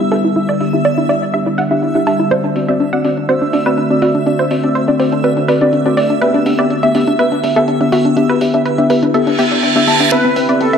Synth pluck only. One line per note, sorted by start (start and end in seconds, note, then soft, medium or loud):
0.00 0.09 E4 medium
0.12 0.21 A4 loud
0.24 0.33 E4 medium
0.36 0.46 E4 medium
0.49 0.58 D5 medium
0.60 0.70 E4 medium
0.73 0.82 E4 medium
0.85 0.95 D5 medium
0.98 1.06 E4 medium
1.09 1.19 D5 medium
1.22 1.31 E4 medium
1.34 1.43 E5 medium
1.46 1.55 E4 medium
1.58 1.68 F#5 medium
1.71 1.80 E4 medium
1.82 1.92 E4 medium
1.95 2.04 E4 medium
2.07 2.16 A5 medium
2.20 2.28 E4 medium
2.31 2.41 C5 loud
2.44 2.53 D4 medium
2.56 2.65 D4 medium
2.68 2.77 E5 medium
2.80 2.90 D4 medium
2.93 3.02 F#5 medium
3.04 3.14 D4 medium
3.17 3.26 D4 medium
3.29 3.38 C5 medium
3.42 3.50 D4 medium
3.53 3.63 D4 medium
3.66 3.75 B4 loud
3.78 3.87 D4 medium
3.90 3.99 D4 medium
4.02 4.12 F#4 medium
4.15 4.24 D4 medium
4.26 4.36 D4 medium
4.39 4.48 C5 medium
4.51 4.60 D4 medium
4.64 4.72 D4 medium
4.75 4.85 C5 medium
4.88 4.97 D4 medium
5.00 5.09 C5 medium
5.12 5.21 D4 medium
5.24 5.34 B4 medium
5.37 5.46 D4 medium
5.48 5.58 B4 medium
5.61 5.70 D4 medium
5.73 5.82 D4 medium
5.86 5.94 D4 medium
5.97 6.07 D5 medium
6.10 6.19 D4 medium
6.22 6.31 B4 loud
6.34 6.43 D4 medium
6.46 6.56 D4 medium
6.59 6.67 D5 medium
6.70 6.80 D4 medium
6.83 6.92 E5 loud
6.95 7.04 D4 medium
7.08 7.16 D4 medium
7.19 7.29 B4 medium
7.32 7.41 D4 medium
7.44 7.53 D4 medium
7.56 7.65 A4 medium
7.68 7.78 D4 medium
7.81 7.89 D4 medium
7.92 8.02 F#4 medium
8.05 8.14 D4 medium
8.17 8.26 D4 medium
8.30 8.38 B4 medium
8.41 8.51 D4 medium
8.54 8.63 D4 medium
8.66 8.75 B4 medium
8.78 8.87 D4 medium
8.90 8.99 B4 medium
9.03 9.11 D4 medium
9.14 9.24 A4 medium
9.27 9.36 D4 medium
9.39 9.48 G4 medium
9.51 9.60 D4 medium
9.63 9.73 D4 medium
9.76 9.85 D4 medium
9.87 9.97 E4 medium
10.00 10.09 D4 medium
10.12 10.21 B4 medium
10.25 10.33 C4 medium
10.36 10.46 C4 medium
10.49 10.58 D5 medium
10.61 10.70 C4 medium
10.73 10.78 E5 medium